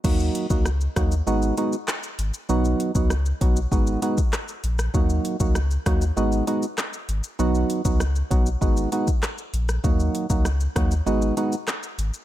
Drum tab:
CC |x---------------|----------------|----------------|----------------|
HH |--x---x---x---x-|--x---x---x---x-|--x---x---x---x-|--x---x---x---x-|
SH |xxxxxxxxxxxxxxxx|xxxxxxxxxxxxxxxx|xxxxxxxxxxxxxxxx|xxxxxxxxxxxxxxxx|
CP |------------x---|------------x---|------------x---|------------x---|
SD |----r-r-----r---|----r-------r--r|----r-r-----r---|----r-------r--r|
BD |o--o--o---------|---o--o-o--o----|o--o--o---------|---o--o-o--o----|

CC |----------------|
HH |--x---x---x---x-|
SH |xxxxxxxxxxxxxxxx|
CP |------------x---|
SD |----r-r-----r---|
BD |o--o--o---------|